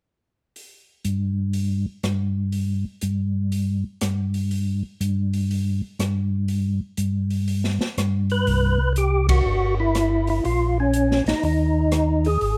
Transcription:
0.56 open hi-hat
1.04 G2, closed hi-hat
1.53 open hi-hat
2.03 G2, cross-stick, closed hi-hat
2.52 open hi-hat
3.01 G2, closed hi-hat
3.52 open hi-hat
4.01 G2, cross-stick, closed hi-hat
4.34 open hi-hat
4.51 open hi-hat
5.00 G2, closed hi-hat
5.33 open hi-hat
5.51 open hi-hat
5.99 G2, cross-stick, closed hi-hat
6.48 open hi-hat
6.97 G2, closed hi-hat
7.30 open hi-hat
7.48 open hi-hat
7.64 snare
7.81 snare
7.97 G2, cross-stick, closed hi-hat
8.30 B4, open hi-hat
8.47 C2, open hi-hat
8.96 G4, closed hi-hat
9.29 F#4, kick, ride
9.46 G1
9.80 E4
9.95 cross-stick, closed hi-hat
10.27 E4, open hi-hat
10.45 A#1 F4, open hi-hat
10.80 C#4
10.93 closed hi-hat
11.11 snare
11.26 A#1 D#4, snare, open hi-hat
11.43 D#2 D#4, open hi-hat
11.92 cross-stick, closed hi-hat
12.25 G#4, open hi-hat
12.41 G#1, open hi-hat

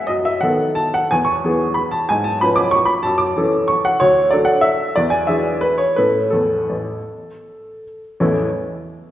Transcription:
0.07 F#2 D#5
0.25 E5
0.41 D#3 B3 A4 F#5
0.75 A5
0.94 F#5
1.11 E2 G#5
1.25 C#6
1.44 E3 B3 G#4
1.74 B5
1.91 A5
2.09 G#2 G#5
2.24 A5
2.41 F3 C#4 B4 B5
2.56 D6
2.71 C#6
2.86 B5
3.03 F#2 A5
3.18 D6
3.37 E3 C#4 A4
3.68 C#6
3.85 F#5
4.00 D2 C#5
4.31 F#3 D4 A4 D5
4.45 F#5
4.61 E5
4.96 E2 D5
5.10 G#5
5.27 E3 D4 G#4 E5
5.61 B4
5.78 C#5
5.96 A2 C#4 A4 B4
6.30 E2 A4
6.70 A1
8.20 A1 E2 E3 A3 C#4 E4

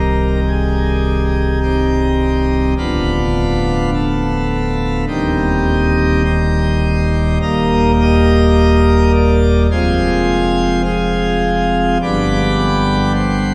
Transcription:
Already playing: C1 C2 D#3 G3 A#4
0.48 G#4
1.63 C4 D#4 G4
2.77 D1 D2 F3 B3 D4 F4 B4
3.94 A4
5.07 D#1 D#2 D#3 G3 C4 D#4 G4
6.25 D#4 G4 C5
7.41 D#1 D#2 G3 A#3 D#4 G4 A#4
8.01 G4 A#4 D#5
9.14 D5
9.71 F1 F2 F3 G#3 C4 F4 G#4 C5
10.85 C4 F4 G#4
12.02 G1 G2 D3 G3 B3 G4 B4 D5
13.15 C5

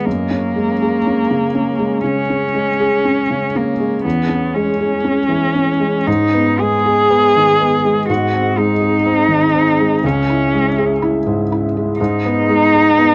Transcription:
0.04 F#2 A#3 C#4 G#4 C#5
0.31 C#4
0.56 G#3
0.82 G#4
1.07 C#4
1.31 C#3
1.55 C#4
1.79 G#3
2.04 C#3 C#4
2.30 C#4
2.55 G#3
2.80 G#4
3.05 C#4
3.31 C#3
3.55 A#3 C#4
3.80 G#3
4.04 E2 B3
4.29 C#4
4.54 G#3 C#4
4.81 G#4
5.04 C#4
5.29 E3
5.55 C#4
5.80 G#3
6.06 G#2 B3 D#4 G#4 D#5
6.34 B3
6.59 G#3 G#4
6.86 G#4
7.10 B3
7.37 D#3
7.61 B3
7.85 G#3
8.08 G#2 C4 F#4
8.34 C4
8.57 G#3 D#4
8.82 G#4
9.06 C4
9.29 D#3
9.55 C4
9.80 G#3
10.03 C#2 C#4 E5
10.30 E4
10.54 G#3
10.78 G#4
11.02 E4
11.27 G#2
11.52 E4
11.77 G#3
11.98 G#2 B3 D#4 G#4 D#5
12.26 B3
12.49 G#3
12.74 G#4
12.98 B3

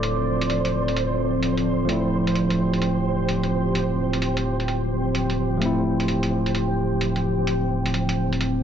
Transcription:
Already playing: D1 F3 A3 C4 E4 A4 C5 D5
0.03 closed hi-hat
0.41 closed hi-hat
0.50 closed hi-hat
0.65 closed hi-hat
0.88 closed hi-hat
0.97 closed hi-hat
1.43 closed hi-hat
1.58 closed hi-hat
1.85 F3 A3
1.89 D1 C4 E4 G4 G5, closed hi-hat
2.27 closed hi-hat
2.36 closed hi-hat
2.50 closed hi-hat
2.73 closed hi-hat
2.82 closed hi-hat
3.29 closed hi-hat
3.44 closed hi-hat
3.75 closed hi-hat
4.13 closed hi-hat
4.22 closed hi-hat
4.37 closed hi-hat
4.60 closed hi-hat
4.68 closed hi-hat
5.15 closed hi-hat
5.30 closed hi-hat
5.57 F3 A3
5.61 C4 E4, closed hi-hat
6.00 closed hi-hat
6.08 closed hi-hat
6.23 closed hi-hat
6.46 closed hi-hat
6.55 closed hi-hat
7.01 closed hi-hat
7.16 closed hi-hat
7.47 closed hi-hat
7.86 closed hi-hat
7.94 closed hi-hat
8.09 closed hi-hat
8.33 closed hi-hat
8.41 closed hi-hat

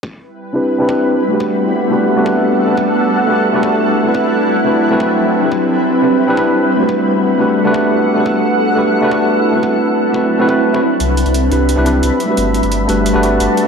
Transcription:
0.03 G3 C4 E4 B4, kick
0.53 C4 D4 E4 G4 B4
0.78 C4 D4 E4 G4 B4
0.87 C4 D4 E4 G4 B4, kick
1.23 B3 A4 F#5
1.29 A3 D4 F#4
1.33 G4 B4
1.40 kick
1.90 A3 D4 F#4 G4 B4
2.16 A3 D4 F#4 G4 B4
2.23 A3 D4 F#4, kick
2.27 G4 B4
2.66 A3 D4 F#4
2.70 G4 B4
2.77 D4 E4, kick
3.27 A3 D4 F#4 G4 B4
3.53 A3 D4 F#4 G4 B4
3.60 A3 D4 F#4, kick
3.64 G4 B4
4.03 A3 C4 E4
4.07 F#4 B4
4.14 F#3 C4 B4, kick
4.64 A3 C4 E4 F#4 B4
4.90 A3 C4 E4 F#4 B4
4.97 A3 C4 E4, kick
5.02 F#4 B4
5.40 C4 D4 E4
5.45 G4 B4
5.52 G3 E4, kick
6.02 C4 D4 E4 G4 B4
6.27 C4 D4 E4 G4 B4
6.36 C4 D4 E4 G4 B4, kick
6.72 B3 A4 F#5
6.77 A3 D4 F#4
6.82 G4 B4
6.89 kick
7.39 A3 D4 F#4 G4 B4
7.64 A3 D4 F#4 G4 B4
7.71 A3 D4 F#4, kick
7.76 G4 B4
8.14 A3 D4 F#4
8.19 G4 B4
8.26 D4 E4, kick
8.76 A3 D4 F#4 G4 B4
9.01 A3 D4 F#4 G4 B4
9.09 A3 D4 F#4, kick
9.13 G4 B4
9.52 A3 C4 E4
9.56 F#4 B4
9.63 F#3 C4 B4, kick
10.13 A3 C4 E4 F#4 B4, kick
10.39 A3 C4 E4 F#4 B4
10.47 A3 C4 E4 F#4 B4, kick
10.73 A3 C4 E4 F#4 B4, kick
11.00 C2 G3 C4 E5 B5, closed hi-hat
11.17 closed hi-hat
11.26 C2, closed hi-hat
11.34 closed hi-hat
11.50 C2 C4 D4 E4 G4 B4, closed hi-hat
11.69 closed hi-hat
11.76 C2 C4 D4 E4 G4 B4
11.84 C4 D4 E4 G4 B4, closed hi-hat
12.03 C2, closed hi-hat
12.20 B4 F#5 A5, closed hi-hat
12.26 A3 D4 F#4
12.30 G4 B4
12.37 G1, closed hi-hat
12.54 closed hi-hat
12.63 G1, closed hi-hat
12.72 closed hi-hat
12.87 G1 A3 D4 F#4 G4 B4, closed hi-hat
13.06 closed hi-hat
13.13 G1 A3 D4 F#4 G4 B4
13.20 A3 D4 F#4, closed hi-hat
13.24 G4 B4
13.40 G1, closed hi-hat
13.57 closed hi-hat
13.63 A3 D4

